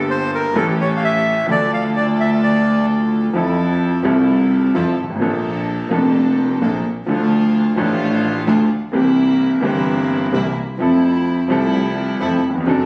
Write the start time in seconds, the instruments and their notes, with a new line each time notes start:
Already playing: double bass G1, grand piano G1 G2 G3 A#3 D4 A4, string section A#3 G4 A4
0.10 bandoneon C5
0.35 bandoneon A#4
0.54 double bass A1, grand piano A1 A2 E3 A3 C#4 G4, string section C#4 G4 A4, bandoneon A4
0.81 bandoneon C#5
0.97 bandoneon F5
1.04 bandoneon E5
1.47 double bass D2, grand piano D2 D3 F3 A3 D4, string section D4 F4 A4
1.51 grand piano A4, bandoneon D5
1.74 bandoneon F5
1.96 bandoneon D5
2.20 bandoneon E5
2.43 bandoneon D5
3.33 grand piano F2 F3 C4 E4, double bass F2, string section E4 A4
3.37 grand piano A4
4.03 grand piano C2 C3 F3 C4 E4 A4, double bass C2, string section E4 A4
4.74 grand piano F2 F3 C4 E4 A4, double bass F2, string section E4 F4 A4
4.98 double bass G#1
5.03 grand piano G1
5.10 grand piano G#1
5.16 grand piano A1 F3
5.21 double bass A#1, grand piano A#1 A#2 A#3 D4 A4, string section A#3 D4 A4
5.89 double bass F1, grand piano F1 F2 F3 A#3 D4, string section A#3 D4 A4
5.94 grand piano A4
6.61 double bass A#1, grand piano A#1 A#2 F3 A#3 D4 A4, string section A#3 D4 A4
7.06 double bass D2, grand piano D2 D3 F3 A3 D4 A4, string section A3 D4 F4
7.76 double bass A1, grand piano A1 A2 F3 A3 D4 A4, string section A3 D4 F4
8.47 double bass D2, grand piano D2 D3 F3 A3 D4 A4, string section A3 D4 F4
8.92 double bass C2, grand piano C2 C3 E3 A#3 C4 G4, string section A#3 C4 E4
9.61 grand piano G1 G2 E3 A#3 C4, double bass G1, string section A#3 C4 E4
9.65 grand piano G4
10.32 double bass C2, grand piano C2 C3 E3 A#3 C4 G4, string section A#3 C4 E4
10.78 double bass F2, grand piano F2 F3 C4 E4 A4, string section F3 A3 E4
11.48 double bass C2, grand piano C2 C3 F3 C4 E4 A4, string section F3 A3 E4
12.20 double bass F2, grand piano F2 F3 C4 E4 A4, string section F3 A3 E4
12.50 grand piano D#2
12.55 grand piano E2
12.60 grand piano F2
12.65 double bass F#1, grand piano F#2 F#3 C4 D4, string section F#3 C4 D4
12.69 grand piano A4